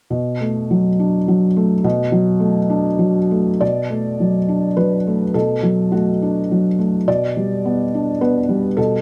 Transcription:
felt piano
0.10 B2
0.41 A3
0.71 F#3
0.99 D4
1.28 F#3
1.57 A3
1.84 B2
2.12 F#3
2.40 A3
2.70 D4
2.99 F#3
3.31 A3
3.61 B2 D5
3.90 A3
4.20 F#3
4.49 D4
4.77 F#3 B4
5.07 A3
5.34 B2 A4
5.63 F#3
5.92 A3 F#4
6.22 D4
6.51 F#3
6.79 A3
7.08 B2 D5
7.37 G3
7.65 B3
7.94 D4
8.21 B3 B4
8.49 G3
8.77 B2 A4

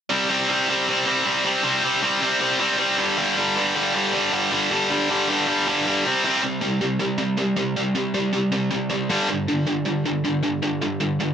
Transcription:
distorted electric guitar
0.10 C3 G3 C4
0.30 C3 G3 C4
0.49 C3 G3 C4
0.69 C3 G3 C4
0.88 C3 G3 C4
1.06 C3 G3 C4
1.25 C3 G3 C4
1.45 C3 G3 C4
1.63 C3 G3 C4
1.83 C3 G3 C4
2.01 C3 G3 C4
2.21 C3 G3 C4
2.40 C3 G3 C4
2.59 C3 G3 C4
2.78 C3 G3 C4
2.97 G2 D3 G3
3.17 G2 D3 G3
3.36 G2 D3 G3
3.56 G2 D3 G3
3.75 G2 D3 G3
3.94 G2 D3 G3
4.13 G2 D3 G3
4.32 G2 D3 G3
4.52 G2 D3 G3
4.71 G2 D3 G3
4.90 G2 D3 G3
5.10 G2 D3 G3
5.29 G2 D3 G3
5.48 G2 D3 G3
5.67 G2 D3 G3
5.85 G2 D3 G3
6.05 C3 G3 C4
6.24 C3 G3 C4
6.42 C3 G3
6.61 C3 G3
6.81 C3 G3
7.00 C3 G3
7.18 C3 G3
7.38 C3 G3
7.57 C3 G3
7.76 C3 G3
7.95 C3 G3
8.14 C3 G3
8.33 C3 G3
8.52 C3 G3
8.71 C3 G3
8.90 C3 G3
9.10 G2 D3 G3
9.29 G2 D3
9.48 G2 D3
9.67 G2 D3
9.86 G2 D3
10.06 G2 D3
10.24 G2 D3
10.43 G2 D3
10.62 G2 D3
10.81 G2 D3
11.00 G2 D3
11.20 G2 D3

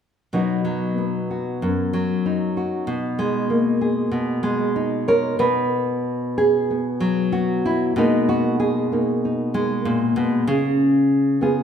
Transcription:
nylon-string guitar
0.33 B2 F#3 B3 D#4 F#4
0.65 F#3
0.98 B3
1.31 F#4
1.62 F#2
1.93 F#3
2.26 D#4
2.57 F#4
2.87 B2
3.19 G#3
3.50 A#3
3.81 G#4
4.12 B2
4.43 G#3
4.76 D#4
5.08 A#4 C#5
5.39 B2 B4
6.38 G#4
6.71 B3
7.00 F#3
7.32 F#4
7.65 E4
7.96 B2 G#3 A#3 D#4
8.29 F#4
8.60 G#4
8.92 A#3 D#4
9.25 D#4
9.54 G#3
9.85 A#2
10.16 B2
10.47 C#3 G#4
11.41 B3 F4 G#4

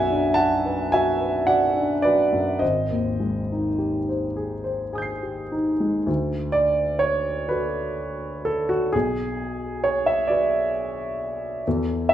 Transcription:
grand piano
Already playing: B1 F#2 F#3 D5 E5 F#5 G#5
0.10 D4
0.34 F#4 F#5 A5
0.66 B4
0.92 F#4 E5 G#5
1.20 B4
1.47 F#4 D5 F#5
1.76 D4
2.02 F#3 B4 D5
2.33 F#2
2.59 G#1 C5 D#5
2.91 D#2
3.20 G#3
3.52 D#4
3.78 G4
4.09 C5
4.36 G#4
4.64 C5
4.93 G#4 G#5 D#6
4.98 G6
5.02 C7
5.23 G4
5.52 D#4
5.80 G#3
6.06 D2
6.52 D5
6.99 C#5
7.49 F#4 A4 B4
8.45 A4
8.69 F#4
8.93 B1 G#4
9.84 C#5
10.06 E5
10.27 F#4 B4 D5
11.67 E2 F#4 A4
12.09 E5

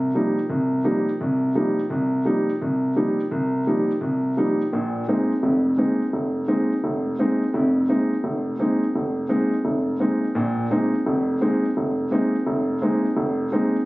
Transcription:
grand piano
0.14 F3 G3 A#3 D#4
0.50 C2
0.84 F3 G3 A#3 D#4
1.21 C2
1.55 F3 G3 A#3 D#4
1.90 C2
2.25 F3 G3 A#3 D#4
2.62 C2
2.96 F3 G3 A#3 D#4
3.31 C2
3.67 F3 G3 A#3 D#4
4.01 C2
4.37 F3 G3 A#3 D#4
4.73 A#1 A#2
5.08 G#3 A#3 C4 D#4
5.43 F1 F2
5.78 G#3 A#3 C4 D#4
6.13 F1
6.48 G#3 A#3 C4 D#4
6.84 F1
7.19 G#3 A#3 C4 D#4
7.54 F1 F2
7.89 G#3 A#3 C4 D#4
8.24 F1
8.59 G#3 A#3 C4 D#4
8.96 F1
9.29 G#3 A#3 C4 D#4
9.65 F1
10.00 G#3 A#3 C4 D#4
10.35 A#1 A#2
10.71 G#3 A#3 C4 D#4
11.06 F1 F2
11.41 G#3 A#3 C4 D#4
11.77 F1
12.11 G#3 A#3 C4 D#4
12.47 F1
12.82 G#3 A#3 C4 D#4
13.17 F1
13.52 G#3 A#3 C4 D#4

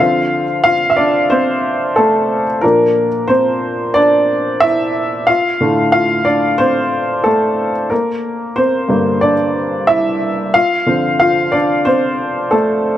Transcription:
upright piano
0.00 D3 F3 C4 F4 F5
0.64 F4 F5
0.90 E5
0.96 D4 D5
1.30 C4 C5
1.96 A3 A4
2.61 A#2 F3 A#3 D4 A#4
3.28 C4 C5
3.94 D4 D5
4.60 E4 E5
5.27 F4 F5
5.60 A2 D3 A3
5.92 F4 F5
6.25 D4 D5
6.58 C4 C5
7.24 A3 A4
7.90 A#3 A#4
8.56 C4 C5
8.89 G2 D3 A#3
9.21 D4 D5
9.87 E4 E5
10.54 F4 F5
10.86 D3 F3 C4
11.20 F4 F5
11.52 D4 D5
11.85 C4 C5
12.51 A3 A4

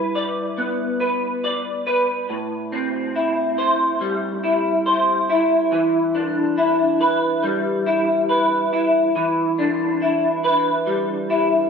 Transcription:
clean electric guitar
Already playing: G3 E4 B4
0.15 D5
0.58 B3
1.00 B4
1.44 D5
1.87 B4
2.29 A2
2.72 C4
3.16 E4
3.58 C5
4.01 G3
4.44 E4
4.86 C5
5.30 E4
5.72 E3
6.15 D4
6.58 E4
7.01 B4
7.43 G3
7.86 E4
8.29 B4
8.73 E4
9.16 E3
9.59 D4
10.02 E4
10.44 B4
10.87 G3
11.30 E4

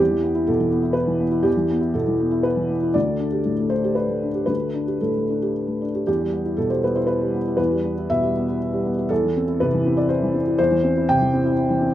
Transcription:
felt piano
Already playing: E2 G4
0.10 E3
0.24 B3
0.35 E4
0.47 B2 A4
0.59 E3
0.71 B3
0.82 E4
0.93 B4
1.07 E3
1.20 B3
1.31 E4
1.43 E2 G4
1.57 E3
1.70 B3
1.81 E4
1.94 B2 A4
2.08 E3
2.20 B3
2.31 E4
2.43 B4
2.56 E3
2.69 B3
2.83 E4
2.94 D2 D5
3.20 D4
3.32 G4
3.45 A2
3.59 A3
3.70 D4 C5
3.84 G4
3.95 B4
4.08 A3
4.23 D4
4.35 G4
4.46 D2 B4
4.60 A3
4.74 D4
4.87 G4
5.01 A2 A4
5.17 A3
5.30 D4
5.42 G4
5.67 A3
5.82 D4
5.95 G4
6.07 E2 G4
6.21 G3
6.33 B3
6.45 E4
6.57 B2 A4
6.70 G3 C5
6.84 B3 B4
6.96 E4 C5
7.07 B4
7.21 G3
7.34 B3
7.48 E4
7.57 E2 B4
7.71 G3
7.85 B3
7.98 E4
8.10 B2 E5
8.23 G3
8.37 B3
8.48 E4
8.73 G3
8.85 B3
8.98 E4
9.09 E2 A4
9.25 E3
9.37 C4
9.47 E4
9.60 C3 B4
9.74 E3
9.86 C4
9.97 E4 D5
10.09 C5
10.23 E3
10.34 C4
10.47 E4
10.59 E2 C5
10.71 E3
10.83 C4
10.97 E4
11.09 C3 G5
11.22 E3
11.33 C4
11.44 E4
11.70 E3
11.81 C4

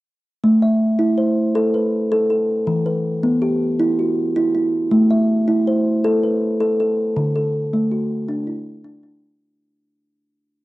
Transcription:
kalimba
0.44 A3
0.62 E5
0.99 E4
1.18 C5
1.55 A4
1.74 B4
2.12 A4
2.30 A4
2.67 E3
2.86 B4
3.23 B3
3.42 G4
3.79 E4
3.99 F#4
4.36 E4
4.55 E4
4.91 A3
5.11 E5
5.48 E4
5.67 C5
6.04 A4
6.23 B4
6.60 A4
6.80 A4
7.17 D3
7.36 A4
7.73 A3
7.91 F#4
8.29 D4
8.47 E4
8.84 D4
9.03 D4

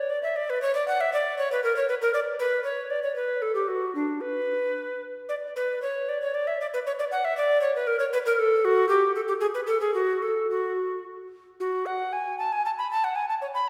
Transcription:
recorder
0.00 C#5
0.10 D5
0.23 E5
0.36 D5
0.50 B4
0.62 C#5
0.75 D5
0.88 F#5
1.01 E5
1.13 D5
1.38 C#5
1.52 B4
1.64 A#4
1.76 C#5
1.89 B4
2.02 A#4
2.14 D5
2.39 B4
2.64 C#5
2.90 D5
3.03 C#5
3.16 B4
3.42 A4
3.55 G4
3.68 F#4
3.95 D4
4.21 B4
5.29 D5
5.56 B4
5.82 C#5
6.09 D5
6.22 C#5
6.35 D5
6.47 E5
6.61 D5
6.74 B4
6.87 C#5
6.99 D5
7.11 F#5
7.25 E5
7.37 D5
7.61 C#5
7.75 B4
7.87 A#4
7.99 C#5
8.13 B4
8.26 A#4
8.39 A4
8.65 F#4
8.89 G4
9.15 A4
9.28 G4
9.40 G#4
9.54 B4
9.67 A4
9.81 G#4
9.94 F#4
10.22 A4
10.50 F#4
11.60 F#4
11.86 F#5
12.13 G#5
12.39 A5
12.52 G#5
12.65 A5
12.78 B5
12.91 A5
13.04 F#5
13.16 G#5
13.29 A5
13.41 C#5
13.55 B5

